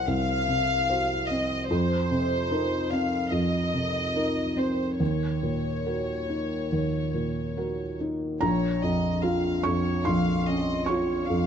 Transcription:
0.00 0.07 C2 medium
0.00 0.48 C3 soft
0.00 0.32 C4 medium
0.00 0.89 F#4 medium
0.00 0.90 C5 medium
0.07 1.66 C2 medium
0.07 1.29 F5 loud
0.48 1.13 C3 soft
0.89 1.26 F#4 medium
0.89 1.26 C5 medium
1.28 1.70 C4 soft
1.28 1.69 D#5 medium
1.68 3.29 F2 medium
1.68 2.88 C5 medium
2.11 2.75 C3 soft
2.51 2.87 D#4 soft
2.51 2.88 A#4 soft
2.90 3.58 C4 soft
2.90 3.32 F5 medium
3.32 4.96 F2 soft
3.32 4.57 D#5 medium
3.74 4.41 C3 soft
4.16 4.54 D#4 soft
4.16 4.54 A#4 soft
4.56 5.00 C4 soft
4.56 5.00 C5 medium
4.99 6.67 D#2 medium
4.99 7.95 C#5 medium
5.43 6.12 A#2 soft
5.86 6.25 F#4 soft
5.86 6.25 A#4 soft
6.29 6.97 D#4 soft
6.72 8.38 D#2 soft
7.14 7.82 A#2 soft
7.57 7.96 F#4 soft
7.57 7.96 A#4 soft
8.00 8.42 D#4 soft
8.41 10.02 A#1 medium
8.41 8.79 C#5 medium
8.41 9.61 A#5 medium
8.81 9.49 F2 soft
8.81 9.23 D#5 medium
9.22 9.89 F4 medium
9.22 9.64 F5 medium
9.63 10.31 F2 medium
9.63 10.05 C#5 medium
9.63 10.02 C#6 medium
10.04 11.47 A#1 medium
10.04 10.46 F5 medium
10.04 10.83 C6 medium
10.47 11.13 C#4 soft
10.47 10.88 D#5 medium
10.86 11.47 F4 medium
10.86 11.27 C#5 medium
10.86 11.47 C#6 medium
11.27 11.47 F2 medium
11.27 11.47 F5 medium

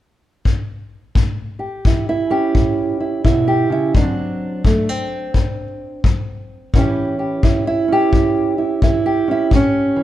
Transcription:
0.45 kick medium
1.15 1.80 A2 medium
1.15 kick medium
1.59 2.29 G4 soft
1.85 2.50 E3 medium
1.85 2.08 E4 soft
1.85 kick medium
2.09 2.99 E4 medium
2.30 3.92 C#4 soft
2.30 3.46 G4 medium
2.55 3.20 A2 medium
2.55 kick medium
3.00 3.24 E4 soft
3.25 3.68 B2 medium
3.25 3.71 E4 medium
3.25 kick medium
3.48 3.94 G4 medium
3.69 3.95 C#3 medium
3.69 3.95 E4 medium
3.95 4.60 D3 medium
3.95 4.65 F#3 medium
3.95 4.65 C4 medium
3.95 6.04 D4 medium
3.95 kick medium
4.65 5.30 F#3 medium
4.65 4.89 A3 soft
4.65 kick medium
4.89 6.75 C4 soft
5.34 5.99 A2 medium
5.34 kick medium
6.04 6.69 F#3 medium
6.04 kick medium
6.74 7.39 A2 medium
6.74 7.43 E3 soft
6.74 7.88 C#4 medium
6.74 7.44 E4 soft
6.74 kick medium
6.78 7.19 G4 medium
7.19 7.91 G4 soft
7.43 8.07 E3 medium
7.43 7.67 E4 medium
7.43 kick medium
7.67 8.56 E4 loud
7.88 9.26 C#4 soft
7.92 9.05 G4 loud
8.13 8.78 A2 medium
8.13 kick medium
8.58 8.82 E4 soft
8.82 9.47 E3 medium
8.82 9.29 E4 medium
8.82 kick medium
9.06 9.98 G4 medium
9.28 9.50 C#4 soft
9.28 9.53 E4 medium
9.51 10.03 A2 medium
9.51 10.03 C#4 medium
9.51 kick medium
9.96 10.03 E3 soft

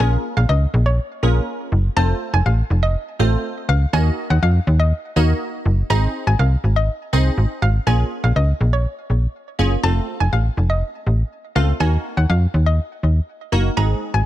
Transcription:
0.00 0.17 A#1 loud
0.00 0.65 A#3 medium
0.00 0.66 C#4 medium
0.00 0.66 F4 medium
0.00 0.66 G#4 medium
0.00 0.66 A#4 medium
0.00 0.21 G#5 loud
0.37 0.45 A#1 loud
0.37 0.47 F5 medium
0.49 0.66 C#2 medium
0.49 0.60 D#5 medium
0.74 0.99 A#1 loud
0.86 1.21 C#5 medium
1.23 1.40 A#1 medium
1.23 1.72 A#3 medium
1.23 1.72 C#4 medium
1.23 1.72 F4 medium
1.23 1.72 G#4 medium
1.23 1.72 A#4 medium
1.72 1.89 F#1 medium
1.96 2.14 F1 loud
1.96 2.62 A3 medium
1.96 2.62 C4 medium
1.96 2.62 F4 medium
1.96 2.62 A4 medium
1.96 2.62 C5 medium
1.96 2.18 A5 loud
2.33 2.42 F1 loud
2.33 2.44 G#5 medium
2.46 2.63 A1 medium
2.46 2.56 F5 medium
2.70 2.96 F1 loud
2.83 3.17 D#5 medium
3.19 3.37 A1 loud
3.19 3.69 A3 medium
3.19 3.69 C4 medium
3.19 3.69 F4 medium
3.19 3.69 A4 medium
3.19 3.69 C5 medium
3.69 3.86 C#2 loud
3.69 3.79 F5 medium
3.93 4.10 D#2 loud
3.93 4.59 A#3 medium
3.93 4.59 D#4 medium
3.93 4.59 F#4 medium
3.93 4.59 A#4 medium
3.93 4.59 D#5 medium
3.93 4.15 G#5 loud
4.30 4.39 D#2 loud
4.30 4.41 F#5 medium
4.43 4.59 F2 loud
4.43 4.53 F5 medium
4.67 4.93 D#2 loud
4.80 5.14 D#5 medium
5.16 5.33 D#2 medium
5.16 5.65 A#3 medium
5.16 5.66 D#4 medium
5.16 5.66 F#4 medium
5.16 5.66 A#4 medium
5.16 5.66 D#5 medium
5.66 5.82 F#1 loud
5.90 6.07 G#1 loud
5.90 6.56 C4 medium
5.90 6.56 D#4 medium
5.90 6.56 G#4 medium
5.90 6.56 C5 medium
5.90 6.56 D#5 medium
5.90 6.11 A#5 loud
6.27 6.35 G#1 loud
6.27 6.38 G#5 medium
6.39 6.56 C2 loud
6.39 6.50 F5 medium
6.64 6.89 G#1 medium
6.76 7.11 D#5 medium
7.13 7.30 C2 medium
7.13 7.62 C4 medium
7.13 7.62 D#4 medium
7.13 7.62 G#4 medium
7.13 7.62 C5 medium
7.13 7.62 D#5 medium
7.38 7.46 G#1 medium
7.62 7.79 G#1 loud
7.62 7.73 F5 medium
7.87 8.04 A#1 loud
7.87 8.52 A#3 medium
7.87 8.52 C#4 medium
7.87 8.53 F4 medium
7.87 8.53 G#4 medium
7.87 8.08 G#5 medium
8.24 8.32 A#1 loud
8.24 8.34 F5 medium
8.36 8.53 C#2 loud
8.36 8.47 D#5 medium
8.61 8.86 A#1 loud
8.73 9.08 C#5 medium
9.10 9.27 A#1 medium
9.59 9.76 F#1 medium
9.59 9.75 A#3 medium
9.59 9.75 C#4 medium
9.59 9.75 F4 medium
9.59 9.75 G#4 loud
9.83 10.00 F1 loud
9.83 10.49 A3 medium
9.83 10.49 C4 medium
9.83 10.49 F4 medium
9.83 10.49 A4 medium
9.83 10.05 A5 loud
10.20 10.29 F1 medium
10.20 10.31 G#5 medium
10.33 10.50 A1 medium
10.33 10.43 F5 medium
10.57 10.83 F1 loud
10.70 11.04 D#5 medium
11.07 11.23 A1 medium
11.55 11.73 C#2 medium
11.55 11.72 A3 medium
11.55 11.72 C4 medium
11.55 11.72 F4 medium
11.55 11.72 A4 medium
11.55 11.66 F5 medium
11.80 11.97 D#2 loud
11.80 12.46 A#3 medium
11.80 12.46 D#4 medium
11.80 12.46 F#4 medium
11.80 12.46 A#4 medium
11.80 12.01 G#5 loud
12.17 12.26 D#2 medium
12.17 12.28 F#5 medium
12.30 12.46 F2 loud
12.30 12.40 F5 medium
12.54 12.79 D#2 medium
12.66 13.01 D#5 medium
13.03 13.20 D#2 medium
13.52 13.69 F#1 loud
13.52 13.69 A#3 medium
13.52 13.69 D#4 medium
13.52 13.69 F#4 medium
13.52 13.69 A#4 medium
13.77 13.94 G#1 loud
13.77 14.26 G#3 medium
13.77 14.26 C4 medium
13.77 14.26 D#4 medium
13.77 14.26 G#4 medium
13.77 13.98 A#5 loud
14.14 14.22 G#1 loud
14.14 14.25 G#5 medium

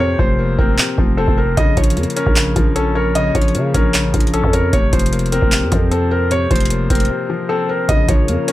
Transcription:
0.00 0.16 F2 loud
0.00 0.78 C3 medium
0.00 0.19 F3 medium
0.00 0.39 A#3 medium
0.00 0.59 C4 loud
0.00 0.78 C5 medium
0.00 0.18 C#5 loud
0.19 0.57 F1 loud
0.19 0.97 F3 medium
0.19 0.56 C5 loud
0.19 kick medium
0.39 1.38 A#3 medium
0.58 0.78 F1 loud
0.58 1.16 C4 medium
0.58 1.14 A#4 medium
0.58 kick medium
0.78 1.57 C3 medium
0.78 clap loud
0.98 1.27 F1 loud
0.98 1.57 F3 medium
0.98 kick medium
1.17 1.57 C4 loud
1.17 1.36 A4 medium
1.28 1.56 F1 loud
1.28 kick medium
1.38 1.56 A#4 medium
1.38 1.57 C5 medium
1.57 1.76 A#1 loud
1.57 2.35 C#3 medium
1.57 1.76 D#5 loud
1.57 kick loud
1.57 closed hi-hat medium
1.77 1.98 A#1 loud
1.77 2.54 F3 medium
1.77 2.14 C#5 medium
1.77 kick medium
1.77 closed hi-hat medium
1.84 closed hi-hat medium
1.90 closed hi-hat medium
1.97 2.06 F2 loud
1.97 2.95 A#3 medium
1.97 closed hi-hat medium
2.03 closed hi-hat medium
2.10 closed hi-hat soft
2.16 2.74 C#4 loud
2.16 2.72 A#4 medium
2.16 closed hi-hat medium
2.26 2.55 A#1 loud
2.26 kick loud
2.36 3.14 C#3 medium
2.36 clap loud
2.36 closed hi-hat medium
2.56 3.32 A#1 loud
2.56 3.33 F3 medium
2.56 kick medium
2.56 closed hi-hat medium
2.76 3.73 C#4 loud
2.76 2.94 A4 medium
2.76 closed hi-hat medium
2.95 3.14 A#4 medium
2.95 3.94 C#5 medium
3.15 3.93 C#3 medium
3.15 3.34 D#5 loud
3.15 closed hi-hat medium
3.35 3.56 A#1 loud
3.35 4.12 F3 medium
3.35 3.72 C#5 loud
3.35 kick medium
3.35 closed hi-hat medium
3.42 closed hi-hat medium
3.48 closed hi-hat soft
3.55 3.73 C#3 loud
3.55 4.53 A#3 medium
3.55 closed hi-hat medium
3.74 4.06 A#1 loud
3.74 4.32 C#4 medium
3.74 4.30 A#4 medium
3.74 kick medium
3.74 closed hi-hat medium
3.94 4.73 C#3 medium
3.94 clap loud
3.94 closed hi-hat medium
4.04 4.13 A1 loud
4.14 4.42 A#1 loud
4.14 4.73 F3 medium
4.14 kick medium
4.14 closed hi-hat medium
4.20 closed hi-hat medium
4.27 closed hi-hat medium
4.34 4.73 C#4 loud
4.34 4.52 A4 medium
4.34 closed hi-hat medium
4.43 4.72 F2 loud
4.43 kick medium
4.53 4.72 A#4 medium
4.53 4.73 C#5 medium
4.53 closed hi-hat medium
4.73 4.92 F1 loud
4.73 5.50 C3 medium
4.73 4.92 C#5 loud
4.73 kick loud
4.73 closed hi-hat medium
4.93 5.40 F1 loud
4.93 5.70 F3 medium
4.93 5.30 C5 medium
4.93 kick medium
4.93 closed hi-hat medium
4.99 closed hi-hat medium
5.06 closed hi-hat medium
5.13 6.11 A#3 medium
5.13 closed hi-hat medium
5.19 closed hi-hat medium
5.26 closed hi-hat soft
5.32 5.90 C4 loud
5.32 5.88 A#4 medium
5.32 closed hi-hat medium
5.42 5.63 F1 loud
5.42 kick loud
5.52 6.29 C3 medium
5.52 clap loud
5.52 closed hi-hat medium
5.62 5.71 F2 loud
5.72 6.48 F2 loud
5.72 6.49 F3 medium
5.72 kick medium
5.72 closed hi-hat medium
5.91 6.89 C4 medium
5.91 6.10 A4 medium
5.91 closed hi-hat medium
6.11 6.30 A#4 medium
6.11 7.10 C5 medium
6.31 7.08 C3 medium
6.31 6.50 C#5 loud
6.31 closed hi-hat medium
6.50 6.89 F1 loud
6.50 7.28 F3 medium
6.50 6.88 C5 medium
6.50 kick medium
6.50 closed hi-hat medium
6.56 closed hi-hat medium
6.60 closed hi-hat medium
6.65 closed hi-hat medium
6.70 7.69 A#3 medium
6.70 closed hi-hat medium
6.90 7.09 F1 loud
6.90 7.48 C4 loud
6.90 7.46 A#4 medium
6.90 kick medium
6.90 closed hi-hat medium
6.95 closed hi-hat medium
7.00 closed hi-hat medium
7.05 closed hi-hat soft
7.10 7.89 C3 medium
7.30 7.89 F3 medium
7.49 7.89 C4 medium
7.49 7.68 A4 medium
7.69 7.88 A#4 medium
7.69 7.89 C5 medium
7.89 8.08 A#1 loud
7.89 8.52 C#3 medium
7.89 8.52 C#4 medium
7.89 8.52 F4 medium
7.89 8.52 A#4 medium
7.89 8.08 D#5 loud
7.89 kick loud
7.89 closed hi-hat medium
8.08 8.30 A#1 loud
8.08 8.52 F3 medium
8.08 8.46 C#5 medium
8.08 kick loud
8.08 closed hi-hat medium
8.28 8.38 F2 loud
8.28 8.52 A#3 medium
8.28 closed hi-hat medium
8.48 8.52 C#4 loud
8.48 8.52 A#4 medium
8.48 closed hi-hat medium

